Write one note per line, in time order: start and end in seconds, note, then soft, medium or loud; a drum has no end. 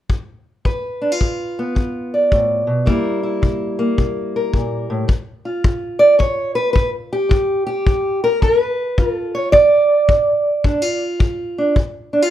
0.10 kick medium
0.65 1.17 G2 medium
0.65 2.13 B4 medium
0.65 kick medium
1.01 1.12 D4 soft
1.12 2.87 F4 soft
1.21 1.72 G2 medium
1.21 kick medium
1.59 2.86 B3 medium
1.75 2.27 G2 medium
1.75 kick medium
2.14 2.85 D5 soft
2.32 2.67 A2 medium
2.32 kick medium
2.67 2.86 B2 soft
2.86 3.38 C3 medium
2.86 5.06 G3 medium
2.86 3.78 A#3 medium
2.86 3.22 E4 medium
2.86 4.35 A#4 medium
2.86 kick medium
3.23 5.07 E4 soft
3.42 3.94 C3 medium
3.42 kick medium
3.79 5.09 A#3 medium
3.98 4.50 C3 medium
3.98 kick medium
4.36 5.07 A#4 medium
4.54 4.89 A#2 soft
4.54 kick medium
4.90 5.08 A2 medium
5.08 5.60 G2 medium
5.08 kick medium
5.45 7.32 F4 soft
5.64 6.16 G2 medium
5.64 kick medium
5.99 6.18 D5 medium
6.18 6.71 G2 medium
6.18 6.55 C#5 medium
6.18 kick medium
6.55 6.72 B4 medium
6.73 7.27 G2 medium
6.73 6.89 B4 medium
6.73 kick medium
7.13 7.65 G4 medium
7.29 7.82 G2 medium
7.29 kick medium
7.67 8.23 G4 medium
7.87 8.38 G2 medium
7.87 kick medium
8.24 8.42 A#4 medium
8.42 8.94 G2 medium
8.42 8.60 A#4 medium
8.42 kick medium
8.60 9.15 B4 medium
8.98 9.50 G2 medium
8.98 9.56 F4 soft
8.98 kick medium
9.15 9.34 A4 medium
9.35 9.52 C#5 medium
9.52 10.05 G2 medium
9.52 11.01 D5 loud
9.52 kick medium
10.08 10.60 G2 medium
10.08 kick medium
10.64 11.17 G2 medium
10.64 10.82 D4 soft
10.64 kick medium
10.82 11.75 F4 soft
11.19 11.72 G2 medium
11.19 kick medium
11.58 11.74 D4 soft
11.76 12.28 G2 medium
11.76 kick medium
12.13 12.22 D4 soft
12.22 12.30 F4 soft